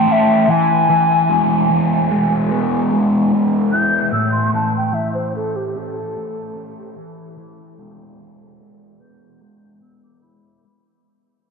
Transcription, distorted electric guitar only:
0.00 0.48 E3 medium
0.00 0.48 A3 medium
0.00 0.75 E4 medium
0.08 0.48 C#4 medium
0.48 0.89 E3 medium
0.90 1.70 E3 medium
1.29 2.10 G#3 medium
1.70 4.53 E3 medium
2.11 2.90 G#3 medium
2.50 3.32 B3 medium
2.91 4.13 G#3 medium
3.33 4.13 B3 medium
3.73 7.23 E4 medium
4.12 6.15 A2 medium
4.53 4.92 E3 medium
4.93 6.96 E3 medium
5.34 6.15 A3 medium
5.75 6.55 C#4 medium
6.16 6.97 A3 medium
6.56 6.97 C#4 medium
6.96 7.36 E3 medium
7.37 8.19 E3 medium
7.79 8.59 G#3 medium
8.21 10.23 E3 medium
8.61 9.40 G#3 medium
9.00 9.80 B3 medium
9.41 10.63 G#3 medium
9.81 10.63 B3 medium
10.23 10.63 E4 medium

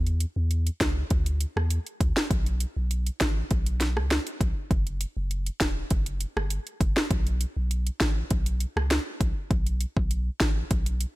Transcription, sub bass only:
0.00 0.25 E2 loud
0.36 0.70 E2 loud
0.81 1.03 C#2 medium
1.11 1.46 D2 loud
1.56 1.79 E2 medium
2.01 2.13 D2 medium
2.31 2.65 B1 loud
2.77 3.10 B1 loud
3.21 3.43 A1 loud
3.51 3.98 B1 loud
3.96 4.19 C#2 medium
4.41 4.53 B1 medium
4.71 5.05 F#1 loud
5.17 5.50 F#1 loud
5.61 5.83 E1 medium
5.91 6.26 F#1 loud
6.37 6.59 G1 medium
6.81 6.93 F#1 loud
7.11 7.45 B1 loud
7.57 7.90 B1 loud
8.01 8.23 A1 loud
8.31 8.66 B1 loud
8.76 8.99 C#2 medium
9.21 9.33 B1 medium
9.51 9.85 B1 loud
9.96 10.30 B1 medium
10.40 10.63 A1 loud
10.71 11.06 B1 medium

